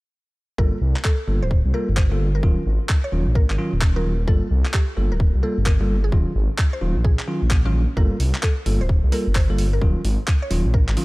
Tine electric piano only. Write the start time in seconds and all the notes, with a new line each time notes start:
0.58 G3 A#3 F4 A4
1.28 G3 A#3 F4 A4
1.74 G3 A#3 F4 A4
2.12 G3 A#3 F4 A4
2.43 D#3 F#3 C#4 F4
3.12 D#3 F#3 C#4 F4
3.58 D#3 F#3 C#4 F4
3.96 D#3 F#3 C#4 F4
4.28 G3 A#3 F4 A4
4.97 G3 A#3 F4 A4
5.43 G3 A#3 F4 A4
5.81 G3 A#3 F4 A4
6.12 D#3 F#3 C#4 F4
6.81 D#3 F#3 C#4 F4
7.28 D#3 F#3 C#4 F4
7.66 D#3 F#3 C#4 F4
7.97 G3 A#3 F4 A4
8.66 G3 A#3 F4 A4
9.12 G3 A#3 F4 A4
9.50 G3 A#3 F4 A4
9.81 D#3 F#3 C#4 F4
10.51 D#3 F#3 C#4 F4
10.97 D#3 F#3 C#4 F4